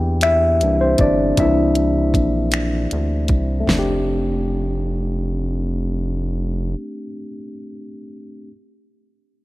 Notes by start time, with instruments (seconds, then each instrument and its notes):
Already playing: analog synth bass E2, tine electric piano E3 A#3 D4 G4 G5
0.21 tine electric piano E4 E5, finger snap, closed hi-hat
0.61 analog synth bass C2, tine electric piano E3 A#3 D4, closed hi-hat
0.81 tine electric piano C4 C5
0.98 analog synth bass G1, tine electric piano D5, kick, closed hi-hat
1.03 tine electric piano D4
1.37 analog synth bass C2, tine electric piano E3 A#3 E5, kick, closed hi-hat
1.42 tine electric piano D4 E4
1.75 closed hi-hat
2.14 analog synth bass A#1, kick, closed hi-hat
2.52 finger snap, closed hi-hat
2.91 analog synth bass D2, closed hi-hat
3.28 analog synth bass C2, kick, closed hi-hat
3.60 tine electric piano A3
3.66 analog synth bass F1, tine electric piano C4, snare, floor tom
3.73 tine electric piano D4
3.79 tine electric piano G4